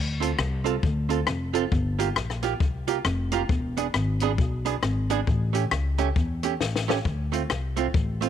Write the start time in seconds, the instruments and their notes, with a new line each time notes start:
Already playing: upright bass D2
0.20 hollow-body jazz guitar C4 F4 A4, closed hi-hat
0.38 upright bass C2, cross-stick
0.64 hollow-body jazz guitar C4 F4 A4, closed hi-hat
0.83 upright bass D2, kick
1.09 hollow-body jazz guitar C4 F4 A4, closed hi-hat
1.27 upright bass F1, muted hollow-body jazz guitar stroke, cross-stick
1.53 hollow-body jazz guitar C4 F4 A4, closed hi-hat
1.72 upright bass G1, kick
1.99 hollow-body jazz guitar A#3 F4 G4, closed hi-hat
2.16 upright bass A#1, cross-stick
2.30 cross-stick
2.43 hollow-body jazz guitar A#3 F4 G4, closed hi-hat
2.60 upright bass C2, kick
2.88 hollow-body jazz guitar A#3 F4 G4, closed hi-hat
3.05 upright bass F1, cross-stick
3.32 hollow-body jazz guitar A#3 F4 G4, closed hi-hat
3.49 upright bass E1, kick
3.77 hollow-body jazz guitar B3 D4 G#4, closed hi-hat
3.94 upright bass G#1, cross-stick
4.20 hollow-body jazz guitar B3 D4 G#4, closed hi-hat
4.38 upright bass B1, kick
4.65 hollow-body jazz guitar B3 D4 G#4, closed hi-hat
4.82 upright bass G#1, muted hollow-body jazz guitar stroke, cross-stick
5.10 hollow-body jazz guitar B3 D4 G#4, closed hi-hat
5.27 upright bass A1, kick
5.53 hollow-body jazz guitar A3 C#4 G4, closed hi-hat
5.71 upright bass C#2, cross-stick
5.98 hollow-body jazz guitar A3 C#4 G4, closed hi-hat
6.16 upright bass E2, kick
6.43 hollow-body jazz guitar A3 C#4 G4, closed hi-hat
6.61 upright bass A1, snare
6.76 snare
6.88 hollow-body jazz guitar A3 C#4 G4, snare
7.05 upright bass D2, kick
7.32 hollow-body jazz guitar A3 C4 F4, closed hi-hat
7.50 upright bass C2, cross-stick
7.76 hollow-body jazz guitar A3 C4 F4, closed hi-hat
7.94 upright bass A1, kick
8.21 hollow-body jazz guitar A3 C4 F4, closed hi-hat